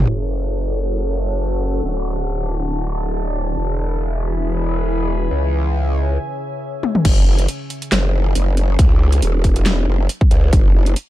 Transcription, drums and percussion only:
0.09 crash
6.83 high tom
6.95 mid tom
7.05 kick, closed hi-hat, crash
7.39 closed hi-hat
7.48 closed hi-hat
7.70 closed hi-hat
7.82 closed hi-hat
7.92 snare, clap, closed hi-hat
8.35 closed hi-hat
8.57 closed hi-hat
8.79 kick, closed hi-hat
9.12 closed hi-hat
9.22 closed hi-hat
9.44 kick, closed hi-hat
9.56 closed hi-hat
9.66 snare, clap, closed hi-hat
10.09 closed hi-hat
10.21 kick
10.31 closed hi-hat
10.53 kick, closed hi-hat
10.86 closed hi-hat
10.96 closed hi-hat

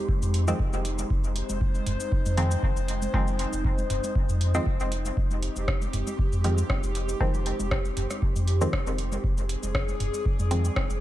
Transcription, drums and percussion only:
0.09 kick
0.22 high conga, cabasa
0.34 closed hi-hat
0.48 high conga, cabasa
0.59 kick
0.73 high conga, cabasa
0.85 closed hi-hat
0.99 high conga, cabasa
1.10 kick
1.24 high conga, cabasa
1.36 closed hi-hat
1.49 high conga, cabasa
1.61 kick
1.75 high conga, cabasa
1.87 closed hi-hat, mid tom
2.00 high conga, cabasa
2.12 kick
2.26 high conga, cabasa
2.37 closed hi-hat
2.51 high conga, cabasa
2.63 kick
2.77 high conga, cabasa
2.88 closed hi-hat
3.02 high conga, cabasa
3.14 kick
3.27 high conga, cabasa
3.39 closed hi-hat
3.53 high conga, cabasa
3.65 kick
3.78 high conga, cabasa
3.90 closed hi-hat, mid tom
4.04 closed hi-hat, high conga, cabasa
4.15 kick
4.29 high conga, cabasa
4.41 closed hi-hat
4.55 high conga, cabasa
4.66 kick
4.80 high conga, cabasa
4.92 closed hi-hat
5.05 high conga, cabasa
5.17 kick
5.31 high conga, cabasa
5.43 closed hi-hat
5.56 high conga, cabasa
5.68 kick, cross-stick
5.82 high conga, cabasa
5.93 closed hi-hat, mid tom
6.07 high conga, cabasa
6.19 kick
6.32 high conga, cabasa
6.44 closed hi-hat
6.58 high conga, cabasa
6.70 kick, cross-stick
6.83 high conga, cabasa
6.95 closed hi-hat
7.09 high conga, cabasa
7.21 kick
7.34 high conga, cabasa
7.46 closed hi-hat
7.60 high conga, cabasa
7.71 kick, cross-stick
7.85 high conga, cabasa
7.97 closed hi-hat, mid tom
8.10 cross-stick, closed hi-hat, high conga, cabasa
8.22 kick
8.36 high conga, cabasa
8.48 closed hi-hat
8.61 high conga, cabasa
8.73 kick, cross-stick
8.87 high conga, cabasa
8.98 closed hi-hat
9.12 high conga, cabasa
9.24 kick
9.38 high conga, cabasa
9.49 closed hi-hat
9.63 high conga, cabasa
9.75 kick, cross-stick
9.88 high conga, cabasa
10.00 closed hi-hat, mid tom
10.14 high conga, cabasa
10.26 kick
10.39 high conga, cabasa
10.51 closed hi-hat
10.65 high conga, cabasa
10.76 kick, cross-stick
10.90 high conga, cabasa

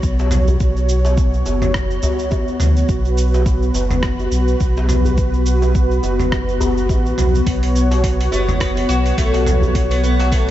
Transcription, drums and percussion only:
0.03 kick, shaker
0.19 djembe slap, shaker
0.31 mid tom, djembe tone, shaker
0.47 djembe bass, shaker
0.60 kick, shaker
0.76 shaker
0.89 shaker
1.05 djembe slap, shaker
1.17 kick, shaker
1.34 shaker
1.46 djembe slap, djembe tone, shaker
1.62 mid tom, djembe slap, shaker
1.74 kick, cross-stick, shaker
1.90 shaker
2.02 djembe tone, djembe bass, shaker
2.19 shaker
2.31 kick, djembe tone, shaker
2.48 shaker
2.60 mid tom, shaker
2.76 shaker
2.89 kick, shaker
3.05 shaker
3.17 shaker
3.34 djembe slap, shaker
3.46 kick, shaker
3.62 shaker
3.74 djembe slap, djembe tone, shaker
3.91 mid tom, shaker
4.03 kick, cross-stick, shaker
4.19 djembe tone, shaker
4.32 shaker
4.48 shaker
4.60 kick, shaker
4.77 djembe slap, shaker
4.89 mid tom, djembe tone, shaker
5.05 djembe bass, shaker
5.17 kick, shaker
5.34 shaker
5.46 shaker
5.62 djembe slap, shaker
5.75 kick, shaker
5.91 shaker
6.03 djembe slap, djembe tone, shaker
6.19 mid tom, djembe slap, shaker
6.31 kick, cross-stick, djembe tone, shaker
6.49 shaker
6.61 djembe tone, djembe bass, shaker
6.77 shaker
6.89 kick, djembe tone, shaker
7.06 shaker
7.18 mid tom, shaker
7.35 shaker
7.46 kick, open hi-hat, shaker
7.63 open hi-hat, shaker
7.75 shaker
7.91 open hi-hat, djembe slap, shaker
8.04 kick, open hi-hat, shaker
8.21 open hi-hat, shaker
8.32 djembe slap, djembe tone, shaker
8.49 mid tom, shaker
8.61 kick, cross-stick, open hi-hat, shaker
8.75 open hi-hat, djembe tone, shaker
8.90 shaker
9.06 open hi-hat, shaker
9.18 kick, open hi-hat, shaker
9.34 open hi-hat, djembe slap, shaker
9.46 mid tom, djembe tone, shaker
9.62 djembe bass, shaker
9.75 kick, open hi-hat, shaker
9.91 open hi-hat, shaker
10.04 shaker
10.20 open hi-hat, djembe slap, shaker
10.32 kick, open hi-hat, shaker

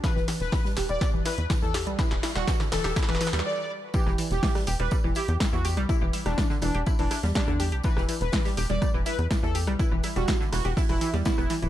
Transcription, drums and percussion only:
0.04 kick, snare, closed hi-hat, tambourine
0.16 snare
0.28 snare, open hi-hat, tambourine
0.40 snare, closed hi-hat
0.52 kick, snare, closed hi-hat, open hi-hat
0.65 snare
0.77 snare, open hi-hat, tambourine
0.89 closed hi-hat
1.01 kick, snare, closed hi-hat, tambourine
1.25 snare, open hi-hat, tambourine
1.38 closed hi-hat
1.50 kick, snare, closed hi-hat, tambourine
1.63 closed hi-hat
1.74 snare, open hi-hat, tambourine
1.87 closed hi-hat
1.99 kick, snare, closed hi-hat, tambourine
2.11 snare
2.23 snare, open hi-hat, tambourine
2.36 snare, closed hi-hat
2.47 kick, snare, closed hi-hat, tambourine
2.60 snare
2.72 snare, open hi-hat
2.84 snare, closed hi-hat
2.96 kick, snare, closed hi-hat
3.03 snare
3.09 snare
3.15 snare
3.21 snare, open hi-hat, tambourine
3.27 snare
3.33 snare, closed hi-hat
3.39 snare
3.94 kick, closed hi-hat, tambourine
4.06 cross-stick, snare
4.18 open hi-hat, tambourine
4.31 snare, closed hi-hat
4.43 kick, snare, closed hi-hat, open hi-hat
4.55 cross-stick, snare, open hi-hat
4.67 open hi-hat, tambourine
4.80 closed hi-hat
4.91 kick, cross-stick, closed hi-hat, tambourine
5.15 open hi-hat, tambourine
5.28 closed hi-hat
5.40 kick, cross-stick, snare, closed hi-hat, tambourine
5.53 closed hi-hat
5.65 open hi-hat, tambourine
5.77 cross-stick, closed hi-hat
5.89 kick, closed hi-hat, tambourine
6.13 open hi-hat, tambourine
6.26 cross-stick, snare, closed hi-hat
6.38 kick, snare, closed hi-hat, tambourine
6.50 snare
6.62 cross-stick, open hi-hat, tambourine
6.75 closed hi-hat
6.86 kick, closed hi-hat, tambourine
6.99 open hi-hat
7.11 cross-stick, snare, open hi-hat
7.23 snare, closed hi-hat, open hi-hat
7.35 kick, snare, closed hi-hat, tambourine
7.48 cross-stick, closed hi-hat
7.60 open hi-hat, tambourine
7.72 closed hi-hat
7.83 kick, closed hi-hat, tambourine
7.97 cross-stick, snare
8.09 open hi-hat, tambourine
8.21 snare, closed hi-hat
8.32 kick, cross-stick, snare, closed hi-hat, open hi-hat
8.45 snare, open hi-hat
8.57 open hi-hat, tambourine
8.70 closed hi-hat
8.82 kick, cross-stick, closed hi-hat, tambourine
9.06 open hi-hat, tambourine
9.19 cross-stick, closed hi-hat
9.31 kick, snare, closed hi-hat, tambourine
9.44 closed hi-hat
9.55 open hi-hat, tambourine
9.67 cross-stick, closed hi-hat
9.79 kick, closed hi-hat, tambourine
10.03 cross-stick, open hi-hat, tambourine
10.15 snare, closed hi-hat
10.28 kick, snare, closed hi-hat, tambourine
10.41 snare
10.52 cross-stick, snare, open hi-hat
10.65 closed hi-hat
10.77 kick, snare, closed hi-hat, open hi-hat
10.89 cross-stick, open hi-hat
11.01 open hi-hat, tambourine
11.14 snare, closed hi-hat
11.25 kick, snare, closed hi-hat, tambourine
11.38 cross-stick, closed hi-hat
11.50 open hi-hat, tambourine
11.62 closed hi-hat

